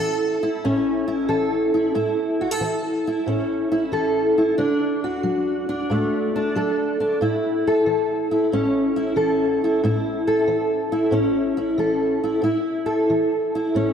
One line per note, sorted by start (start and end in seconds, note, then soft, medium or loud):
0.00 0.60 E3 medium
0.00 0.64 C#4 medium
0.00 0.42 E4 medium
0.00 1.27 A4 medium
0.43 1.06 E4 medium
0.64 1.26 A2 medium
0.64 1.94 C#4 medium
1.08 1.73 E4 medium
1.29 1.91 E3 medium
1.29 2.41 A4 medium
1.74 1.93 E4 medium
1.95 2.57 A2 medium
1.95 3.06 E4 medium
2.41 2.51 F#4 medium
2.51 3.92 A4 medium
2.61 3.23 E3 medium
3.07 3.70 E4 medium
3.26 3.88 A2 medium
3.26 4.56 C#4 medium
3.72 4.37 E4 medium
3.92 4.54 E3 medium
3.92 5.04 A4 medium
4.38 4.56 E4 medium
4.58 5.20 D3 medium
4.58 5.68 D4 medium
5.04 6.55 F#4 medium
5.23 5.85 F#3 medium
5.69 6.34 D4 medium
5.90 6.51 A2 medium
5.90 8.53 A3 medium
6.36 6.99 D4 medium
6.55 7.16 F#3 medium
6.55 7.67 A4 medium
7.00 7.18 D4 medium
7.21 7.82 A2 medium
7.21 8.31 E4 medium
7.67 9.16 A4 medium
7.86 8.47 E3 medium
8.31 8.96 E4 medium
8.52 9.13 A2 medium
8.52 11.12 C#4 medium
8.96 9.64 E4 medium
9.16 9.77 E3 medium
9.16 10.27 A4 medium
9.64 9.84 E4 medium
9.84 10.44 A2 medium
9.84 10.92 E4 medium
10.27 11.78 A4 medium
10.48 11.08 E3 medium
10.92 11.57 E4 medium
11.11 11.73 A2 medium
11.11 12.40 C#4 medium
11.57 12.23 E4 medium
11.78 12.39 E3 medium
11.78 12.41 A4 medium
12.24 12.43 E4 medium
12.42 13.03 A2 medium
12.42 13.55 E4 medium
12.86 13.93 A4 medium
13.10 13.70 E3 medium
13.55 13.93 E4 medium
13.75 13.93 A2 medium
13.75 13.93 C#4 medium